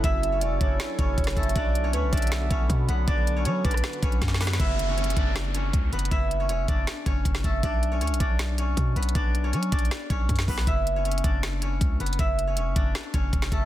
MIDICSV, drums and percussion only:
0, 0, Header, 1, 2, 480
1, 0, Start_track
1, 0, Key_signature, 3, "minor"
1, 0, Tempo, 379747
1, 48, Time_signature, 4, 2, 24, 8
1, 17255, End_track
2, 0, Start_track
2, 0, Title_t, "Drums"
2, 48, Note_on_c, 9, 36, 110
2, 49, Note_on_c, 9, 42, 80
2, 175, Note_off_c, 9, 36, 0
2, 176, Note_off_c, 9, 42, 0
2, 295, Note_on_c, 9, 42, 66
2, 421, Note_off_c, 9, 42, 0
2, 523, Note_on_c, 9, 42, 80
2, 650, Note_off_c, 9, 42, 0
2, 768, Note_on_c, 9, 42, 83
2, 769, Note_on_c, 9, 36, 97
2, 895, Note_off_c, 9, 36, 0
2, 895, Note_off_c, 9, 42, 0
2, 1008, Note_on_c, 9, 38, 110
2, 1011, Note_on_c, 9, 42, 82
2, 1135, Note_off_c, 9, 38, 0
2, 1138, Note_off_c, 9, 42, 0
2, 1247, Note_on_c, 9, 36, 100
2, 1247, Note_on_c, 9, 42, 75
2, 1374, Note_off_c, 9, 36, 0
2, 1374, Note_off_c, 9, 42, 0
2, 1488, Note_on_c, 9, 36, 92
2, 1489, Note_on_c, 9, 42, 89
2, 1568, Note_off_c, 9, 42, 0
2, 1568, Note_on_c, 9, 42, 68
2, 1606, Note_on_c, 9, 37, 104
2, 1606, Note_on_c, 9, 38, 103
2, 1614, Note_off_c, 9, 36, 0
2, 1648, Note_off_c, 9, 42, 0
2, 1648, Note_on_c, 9, 42, 49
2, 1727, Note_off_c, 9, 42, 0
2, 1727, Note_on_c, 9, 36, 96
2, 1727, Note_on_c, 9, 42, 44
2, 1732, Note_off_c, 9, 37, 0
2, 1732, Note_off_c, 9, 38, 0
2, 1808, Note_off_c, 9, 42, 0
2, 1808, Note_on_c, 9, 42, 58
2, 1854, Note_off_c, 9, 36, 0
2, 1888, Note_off_c, 9, 42, 0
2, 1888, Note_on_c, 9, 42, 72
2, 1966, Note_off_c, 9, 42, 0
2, 1966, Note_on_c, 9, 42, 81
2, 1968, Note_on_c, 9, 36, 114
2, 2093, Note_off_c, 9, 42, 0
2, 2094, Note_off_c, 9, 36, 0
2, 2216, Note_on_c, 9, 42, 67
2, 2342, Note_off_c, 9, 42, 0
2, 2444, Note_on_c, 9, 42, 82
2, 2571, Note_off_c, 9, 42, 0
2, 2689, Note_on_c, 9, 36, 99
2, 2689, Note_on_c, 9, 42, 72
2, 2748, Note_off_c, 9, 42, 0
2, 2748, Note_on_c, 9, 42, 72
2, 2809, Note_off_c, 9, 42, 0
2, 2809, Note_on_c, 9, 42, 68
2, 2815, Note_off_c, 9, 36, 0
2, 2870, Note_off_c, 9, 42, 0
2, 2870, Note_on_c, 9, 42, 70
2, 2929, Note_on_c, 9, 38, 110
2, 2996, Note_off_c, 9, 42, 0
2, 3056, Note_off_c, 9, 38, 0
2, 3167, Note_on_c, 9, 36, 99
2, 3168, Note_on_c, 9, 42, 82
2, 3294, Note_off_c, 9, 36, 0
2, 3295, Note_off_c, 9, 42, 0
2, 3408, Note_on_c, 9, 36, 94
2, 3410, Note_on_c, 9, 42, 92
2, 3534, Note_off_c, 9, 36, 0
2, 3537, Note_off_c, 9, 42, 0
2, 3648, Note_on_c, 9, 42, 68
2, 3775, Note_off_c, 9, 42, 0
2, 3888, Note_on_c, 9, 42, 81
2, 3889, Note_on_c, 9, 36, 113
2, 4015, Note_off_c, 9, 36, 0
2, 4015, Note_off_c, 9, 42, 0
2, 4136, Note_on_c, 9, 42, 68
2, 4263, Note_off_c, 9, 42, 0
2, 4365, Note_on_c, 9, 42, 80
2, 4491, Note_off_c, 9, 42, 0
2, 4609, Note_on_c, 9, 36, 98
2, 4609, Note_on_c, 9, 42, 53
2, 4690, Note_off_c, 9, 42, 0
2, 4690, Note_on_c, 9, 42, 69
2, 4730, Note_on_c, 9, 37, 74
2, 4736, Note_off_c, 9, 36, 0
2, 4771, Note_off_c, 9, 42, 0
2, 4771, Note_on_c, 9, 42, 85
2, 4850, Note_off_c, 9, 42, 0
2, 4850, Note_on_c, 9, 38, 113
2, 4850, Note_on_c, 9, 42, 83
2, 4857, Note_off_c, 9, 37, 0
2, 4970, Note_off_c, 9, 42, 0
2, 4970, Note_on_c, 9, 42, 50
2, 4977, Note_off_c, 9, 38, 0
2, 5088, Note_on_c, 9, 36, 101
2, 5090, Note_off_c, 9, 42, 0
2, 5090, Note_on_c, 9, 42, 76
2, 5210, Note_off_c, 9, 42, 0
2, 5210, Note_on_c, 9, 42, 44
2, 5215, Note_off_c, 9, 36, 0
2, 5329, Note_on_c, 9, 36, 92
2, 5331, Note_off_c, 9, 42, 0
2, 5331, Note_on_c, 9, 38, 64
2, 5331, Note_on_c, 9, 42, 89
2, 5410, Note_off_c, 9, 38, 0
2, 5410, Note_off_c, 9, 42, 0
2, 5410, Note_on_c, 9, 38, 63
2, 5410, Note_on_c, 9, 42, 67
2, 5455, Note_off_c, 9, 36, 0
2, 5491, Note_off_c, 9, 38, 0
2, 5491, Note_off_c, 9, 42, 0
2, 5491, Note_on_c, 9, 38, 82
2, 5491, Note_on_c, 9, 42, 48
2, 5569, Note_off_c, 9, 38, 0
2, 5569, Note_off_c, 9, 42, 0
2, 5569, Note_on_c, 9, 38, 81
2, 5569, Note_on_c, 9, 42, 62
2, 5570, Note_on_c, 9, 46, 77
2, 5651, Note_off_c, 9, 38, 0
2, 5651, Note_off_c, 9, 42, 0
2, 5651, Note_on_c, 9, 38, 103
2, 5651, Note_on_c, 9, 42, 61
2, 5696, Note_off_c, 9, 46, 0
2, 5731, Note_off_c, 9, 38, 0
2, 5731, Note_off_c, 9, 42, 0
2, 5731, Note_on_c, 9, 38, 96
2, 5731, Note_on_c, 9, 42, 58
2, 5810, Note_off_c, 9, 42, 0
2, 5810, Note_on_c, 9, 36, 113
2, 5810, Note_on_c, 9, 42, 78
2, 5858, Note_off_c, 9, 38, 0
2, 5936, Note_off_c, 9, 36, 0
2, 5936, Note_off_c, 9, 42, 0
2, 6058, Note_on_c, 9, 42, 62
2, 6185, Note_off_c, 9, 42, 0
2, 6290, Note_on_c, 9, 42, 49
2, 6370, Note_off_c, 9, 42, 0
2, 6370, Note_on_c, 9, 42, 66
2, 6449, Note_off_c, 9, 42, 0
2, 6449, Note_on_c, 9, 42, 78
2, 6530, Note_off_c, 9, 42, 0
2, 6530, Note_on_c, 9, 36, 99
2, 6530, Note_on_c, 9, 42, 83
2, 6656, Note_off_c, 9, 36, 0
2, 6656, Note_off_c, 9, 42, 0
2, 6770, Note_on_c, 9, 38, 109
2, 6773, Note_on_c, 9, 42, 80
2, 6897, Note_off_c, 9, 38, 0
2, 6900, Note_off_c, 9, 42, 0
2, 7009, Note_on_c, 9, 42, 80
2, 7135, Note_off_c, 9, 42, 0
2, 7248, Note_on_c, 9, 36, 90
2, 7252, Note_on_c, 9, 42, 91
2, 7375, Note_off_c, 9, 36, 0
2, 7378, Note_off_c, 9, 42, 0
2, 7490, Note_on_c, 9, 42, 41
2, 7570, Note_off_c, 9, 42, 0
2, 7570, Note_on_c, 9, 42, 59
2, 7650, Note_off_c, 9, 42, 0
2, 7650, Note_on_c, 9, 42, 70
2, 7729, Note_off_c, 9, 42, 0
2, 7729, Note_on_c, 9, 36, 109
2, 7729, Note_on_c, 9, 42, 79
2, 7855, Note_off_c, 9, 36, 0
2, 7855, Note_off_c, 9, 42, 0
2, 7977, Note_on_c, 9, 42, 67
2, 8104, Note_off_c, 9, 42, 0
2, 8206, Note_on_c, 9, 42, 79
2, 8333, Note_off_c, 9, 42, 0
2, 8448, Note_on_c, 9, 36, 95
2, 8448, Note_on_c, 9, 42, 82
2, 8574, Note_off_c, 9, 36, 0
2, 8574, Note_off_c, 9, 42, 0
2, 8688, Note_on_c, 9, 38, 106
2, 8691, Note_on_c, 9, 42, 82
2, 8815, Note_off_c, 9, 38, 0
2, 8817, Note_off_c, 9, 42, 0
2, 8926, Note_on_c, 9, 36, 94
2, 8927, Note_on_c, 9, 42, 76
2, 9053, Note_off_c, 9, 36, 0
2, 9053, Note_off_c, 9, 42, 0
2, 9167, Note_on_c, 9, 36, 93
2, 9170, Note_on_c, 9, 42, 83
2, 9286, Note_on_c, 9, 38, 102
2, 9293, Note_off_c, 9, 36, 0
2, 9297, Note_off_c, 9, 42, 0
2, 9406, Note_on_c, 9, 36, 94
2, 9407, Note_on_c, 9, 42, 68
2, 9413, Note_off_c, 9, 38, 0
2, 9533, Note_off_c, 9, 36, 0
2, 9533, Note_off_c, 9, 42, 0
2, 9647, Note_on_c, 9, 36, 108
2, 9647, Note_on_c, 9, 42, 80
2, 9773, Note_off_c, 9, 42, 0
2, 9774, Note_off_c, 9, 36, 0
2, 9895, Note_on_c, 9, 42, 63
2, 10021, Note_off_c, 9, 42, 0
2, 10126, Note_on_c, 9, 42, 47
2, 10206, Note_off_c, 9, 42, 0
2, 10206, Note_on_c, 9, 42, 63
2, 10287, Note_off_c, 9, 42, 0
2, 10287, Note_on_c, 9, 42, 79
2, 10368, Note_off_c, 9, 42, 0
2, 10368, Note_on_c, 9, 36, 95
2, 10368, Note_on_c, 9, 42, 81
2, 10494, Note_off_c, 9, 36, 0
2, 10494, Note_off_c, 9, 42, 0
2, 10608, Note_on_c, 9, 38, 112
2, 10611, Note_on_c, 9, 42, 79
2, 10735, Note_off_c, 9, 38, 0
2, 10737, Note_off_c, 9, 42, 0
2, 10847, Note_on_c, 9, 42, 83
2, 10973, Note_off_c, 9, 42, 0
2, 11087, Note_on_c, 9, 36, 91
2, 11089, Note_on_c, 9, 42, 91
2, 11213, Note_off_c, 9, 36, 0
2, 11216, Note_off_c, 9, 42, 0
2, 11328, Note_on_c, 9, 42, 41
2, 11408, Note_off_c, 9, 42, 0
2, 11408, Note_on_c, 9, 42, 56
2, 11486, Note_off_c, 9, 42, 0
2, 11486, Note_on_c, 9, 42, 72
2, 11567, Note_off_c, 9, 42, 0
2, 11567, Note_on_c, 9, 36, 107
2, 11567, Note_on_c, 9, 42, 78
2, 11694, Note_off_c, 9, 36, 0
2, 11694, Note_off_c, 9, 42, 0
2, 11815, Note_on_c, 9, 42, 65
2, 11941, Note_off_c, 9, 42, 0
2, 12048, Note_on_c, 9, 42, 50
2, 12168, Note_off_c, 9, 42, 0
2, 12168, Note_on_c, 9, 42, 82
2, 12288, Note_on_c, 9, 36, 95
2, 12289, Note_off_c, 9, 42, 0
2, 12289, Note_on_c, 9, 42, 82
2, 12370, Note_off_c, 9, 42, 0
2, 12370, Note_on_c, 9, 42, 65
2, 12415, Note_off_c, 9, 36, 0
2, 12450, Note_off_c, 9, 42, 0
2, 12450, Note_on_c, 9, 42, 47
2, 12530, Note_on_c, 9, 38, 107
2, 12533, Note_off_c, 9, 42, 0
2, 12533, Note_on_c, 9, 42, 80
2, 12656, Note_off_c, 9, 38, 0
2, 12659, Note_off_c, 9, 42, 0
2, 12767, Note_on_c, 9, 36, 100
2, 12769, Note_on_c, 9, 42, 75
2, 12893, Note_off_c, 9, 36, 0
2, 12895, Note_off_c, 9, 42, 0
2, 13008, Note_on_c, 9, 36, 91
2, 13010, Note_on_c, 9, 42, 70
2, 13090, Note_off_c, 9, 42, 0
2, 13090, Note_on_c, 9, 42, 69
2, 13129, Note_on_c, 9, 38, 101
2, 13134, Note_off_c, 9, 36, 0
2, 13169, Note_off_c, 9, 42, 0
2, 13169, Note_on_c, 9, 42, 66
2, 13247, Note_on_c, 9, 36, 96
2, 13249, Note_on_c, 9, 46, 74
2, 13255, Note_off_c, 9, 38, 0
2, 13296, Note_off_c, 9, 42, 0
2, 13368, Note_on_c, 9, 38, 72
2, 13374, Note_off_c, 9, 36, 0
2, 13375, Note_off_c, 9, 46, 0
2, 13489, Note_on_c, 9, 36, 109
2, 13489, Note_on_c, 9, 42, 79
2, 13494, Note_off_c, 9, 38, 0
2, 13615, Note_off_c, 9, 36, 0
2, 13615, Note_off_c, 9, 42, 0
2, 13738, Note_on_c, 9, 42, 64
2, 13864, Note_off_c, 9, 42, 0
2, 13970, Note_on_c, 9, 42, 50
2, 14050, Note_off_c, 9, 42, 0
2, 14050, Note_on_c, 9, 42, 67
2, 14129, Note_off_c, 9, 42, 0
2, 14129, Note_on_c, 9, 42, 79
2, 14209, Note_on_c, 9, 36, 97
2, 14210, Note_off_c, 9, 42, 0
2, 14210, Note_on_c, 9, 42, 81
2, 14336, Note_off_c, 9, 36, 0
2, 14336, Note_off_c, 9, 42, 0
2, 14450, Note_on_c, 9, 38, 109
2, 14453, Note_on_c, 9, 42, 80
2, 14576, Note_off_c, 9, 38, 0
2, 14579, Note_off_c, 9, 42, 0
2, 14687, Note_on_c, 9, 42, 81
2, 14814, Note_off_c, 9, 42, 0
2, 14928, Note_on_c, 9, 36, 94
2, 14931, Note_on_c, 9, 42, 88
2, 15055, Note_off_c, 9, 36, 0
2, 15058, Note_off_c, 9, 42, 0
2, 15169, Note_on_c, 9, 42, 42
2, 15249, Note_off_c, 9, 42, 0
2, 15249, Note_on_c, 9, 42, 57
2, 15329, Note_off_c, 9, 42, 0
2, 15329, Note_on_c, 9, 42, 68
2, 15409, Note_off_c, 9, 42, 0
2, 15409, Note_on_c, 9, 36, 109
2, 15409, Note_on_c, 9, 42, 79
2, 15536, Note_off_c, 9, 36, 0
2, 15536, Note_off_c, 9, 42, 0
2, 15657, Note_on_c, 9, 42, 65
2, 15784, Note_off_c, 9, 42, 0
2, 15885, Note_on_c, 9, 42, 79
2, 16012, Note_off_c, 9, 42, 0
2, 16129, Note_on_c, 9, 36, 96
2, 16129, Note_on_c, 9, 42, 78
2, 16256, Note_off_c, 9, 36, 0
2, 16256, Note_off_c, 9, 42, 0
2, 16369, Note_on_c, 9, 38, 108
2, 16372, Note_on_c, 9, 42, 76
2, 16496, Note_off_c, 9, 38, 0
2, 16499, Note_off_c, 9, 42, 0
2, 16607, Note_on_c, 9, 36, 97
2, 16607, Note_on_c, 9, 42, 75
2, 16734, Note_off_c, 9, 36, 0
2, 16734, Note_off_c, 9, 42, 0
2, 16848, Note_on_c, 9, 36, 93
2, 16851, Note_on_c, 9, 42, 83
2, 16966, Note_on_c, 9, 38, 101
2, 16975, Note_off_c, 9, 36, 0
2, 16977, Note_off_c, 9, 42, 0
2, 17087, Note_on_c, 9, 36, 96
2, 17088, Note_on_c, 9, 42, 68
2, 17093, Note_off_c, 9, 38, 0
2, 17214, Note_off_c, 9, 36, 0
2, 17214, Note_off_c, 9, 42, 0
2, 17255, End_track
0, 0, End_of_file